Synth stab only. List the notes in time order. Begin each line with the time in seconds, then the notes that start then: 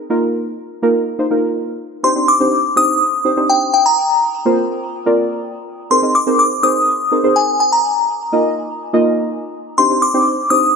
0.10 A#3 D#4 F4 A#4
0.82 A#3 D#4 F4 A#4
1.19 A#3 D#4 F4 C5
1.30 A#3 D#4 F4 A#4
2.03 C4 D4 D#4 G4 C5
2.15 C4 D4 D#4 G4 C5
2.40 C4 D4 D#4 G4 C5
2.76 C4 D4 D#4 G4 C5
3.24 C4 D4 D#4 G4 C5
3.37 C4 D4 D#4 G4 C5
4.45 A#3 C4 F4 A#4 C5
5.06 A#3 C4 F4 A#4 D5
5.91 C4 D#4 G#4 A#4 C5
6.02 C4 D#4 G#4 A#4 D#5
6.27 C4 D#4 G#4 A#4 C5
6.63 C4 D#4 G#4 A#4 C5
7.11 C4 D#4 G#4 A#4 C5
7.23 C4 D#4 G#4 A#4 C5
8.32 A#3 D#4 F4 A#4 D#5
8.93 A#3 D#4 F4 A#4 D#5
9.78 C4 D4 D#4 G4 C5
9.90 C4 D4 D#4 G4 C5
10.14 C4 D4 D#4 G4 C5
10.50 C4 D4 D#4 G4 C5